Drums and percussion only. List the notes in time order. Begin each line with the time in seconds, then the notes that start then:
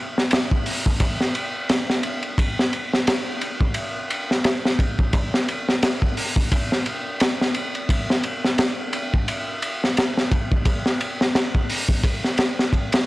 0.18 snare
0.31 snare, ride
0.51 kick
0.66 open hi-hat
0.86 kick
1.00 kick, ride
1.21 snare
1.35 ride
1.69 snare, ride
1.90 snare
2.03 ride
2.22 ride
2.38 kick, ride
2.59 snare
2.73 ride
2.93 snare
3.07 snare, ride
3.41 ride
3.61 kick
3.74 ride
4.10 ride
4.31 snare
4.44 snare, ride
4.65 snare
4.79 kick, ride
4.99 kick
5.13 kick, ride
5.34 snare
5.48 ride
5.69 snare
5.83 snare, ride
6.02 kick
6.17 open hi-hat
6.36 kick
6.52 kick, ride
6.72 snare
6.86 ride
7.20 snare, ride
7.41 snare
7.54 ride
7.75 ride
7.89 kick, ride
8.10 snare
8.23 ride
8.44 snare
8.58 snare, ride
8.93 ride
9.14 kick
9.28 ride
9.62 ride
9.84 snare
9.97 snare, ride
10.17 snare
10.32 kick, ride
10.52 kick
10.65 kick, ride
10.86 snare
11.01 ride
11.21 snare
11.35 snare, ride
11.55 kick
11.70 open hi-hat
11.89 kick
12.04 kick, ride
12.24 snare
12.38 snare, ride
12.59 snare
12.73 kick, ride
12.92 snare, ride